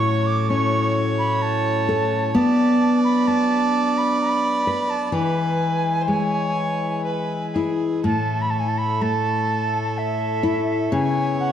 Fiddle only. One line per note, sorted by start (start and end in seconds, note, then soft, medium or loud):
0.00 0.49 C#5 medium
0.50 2.35 C#5 medium
2.34 5.15 D5 loud
5.14 6.03 B4 medium
6.01 6.09 C5 soft
6.08 7.04 C#5 medium
7.05 7.56 B4 medium
7.54 8.03 G#4 medium
8.04 10.93 A4 medium
10.92 11.52 C#5 loud